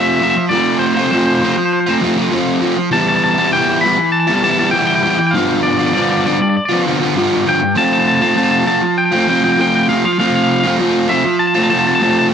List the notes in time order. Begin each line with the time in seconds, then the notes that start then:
Already playing: F3 A3 C4 F4
0.02 E5
0.08 E5
0.16 F3 E5
0.21 A3 C4 F4 E5
0.30 E5
0.37 E5, muted overdriven electric guitar stroke
0.49 F3 A3 D5
0.54 C4 F4
0.79 C5
0.87 C5
0.94 F4 C5
0.99 A3 C4 C5
1.11 F3 A3 C4 F4 C5
1.18 C5
1.26 C5
1.35 C5
1.41 F3 A3 C4 F4 C5
1.50 C5
1.57 C5, muted overdriven electric guitar stroke
1.65 C5
1.73 C5
1.80 C5
1.86 A3 C4 F4 C5
2.01 F3 A3 C4 F4
2.17 A3 C4 F4
2.31 F3 A3 C4 F4
2.62 F3 A3 C4 F4
2.77 muted overdriven electric guitar stroke
2.91 E3 G3 B3 E4 A5
3.01 A5
3.08 A5
3.16 A5
3.24 A5
3.31 A5
3.37 G3 B3 E4 A5
3.47 A5
3.52 E3 G3 B3 E4 G5
3.81 E3 G3 B3 B5
3.86 E4
3.98 muted overdriven electric guitar stroke
4.12 A5
4.20 A5
4.27 G3 B3 E4 A5
4.36 A5
4.42 E3 G3 B3 E4 A5
4.51 A5
4.58 G3 B3 E4 A5
4.67 A5
4.71 E3 G3 B3 G5
4.76 E4 G5
4.87 G5
4.95 G5
5.03 E3 G3 B3 E4 G5
5.10 G5
5.19 G5, muted overdriven electric guitar stroke
5.27 G5
5.31 G2 D3 F5
5.35 F3 B3 F4
5.63 D5
5.71 D5
5.78 F3 B3 F4 D5
5.86 D5
5.94 G2 D3 F3 B3 F4 D5
6.02 D5
6.11 D5
6.17 D5
6.25 D3 F3 B3 F4 D5
6.33 D5
6.40 D5, muted overdriven electric guitar stroke
6.49 D5
6.57 D5
6.65 D5
6.69 F3 B3 F4 D5
6.85 D3 F3 B3 F4
7.00 F3 B3 F4
7.14 G2 D3 F3 B3 F4
7.45 D3 F3 B3 F4 G5
7.62 muted overdriven electric guitar stroke
7.75 F3 A3 C4 F4 A5
7.84 A5
7.93 A5
7.99 A5
8.08 A5
8.15 A5
8.21 A3 C4 F4 A5
8.29 A5
8.35 F3 A3 C4 F4 A5
8.44 A5
8.51 A5
8.59 A5
8.65 F3 A3 C4 F4 A5
8.82 muted overdriven electric guitar stroke
8.98 G5
9.05 G5
9.11 A3 C4 F4 G5
9.21 G5
9.27 F3 A3 C4 F4 G5
9.36 G5
9.42 A3 C4 F4 G5
9.52 G5
9.58 F3 A3 C4 F4 G5
9.68 G5
9.75 G5
9.83 G5
9.88 F3 A3 C4 F4 F5
9.97 F5
10.05 F5, muted overdriven electric guitar stroke
10.13 F5
10.19 F3 A3 C4 F4 F5
10.27 F5
10.35 F5
10.44 F5
10.52 F5
10.60 F4 F5
10.66 A3 C4 F5
10.79 F3 A3 C4 F4
11.09 F3 A3 C4 F4 E5
11.25 muted overdriven electric guitar stroke
11.39 A5
11.47 A5
11.55 A3 C4 F4 A5
11.64 A5
11.70 F3 A3 C4 F4 A5
11.79 A5
11.85 A3 C4 F4 A5
11.95 A5
12.00 F3 A3 C4 F4 A5
12.11 A5
12.19 A5
12.30 F3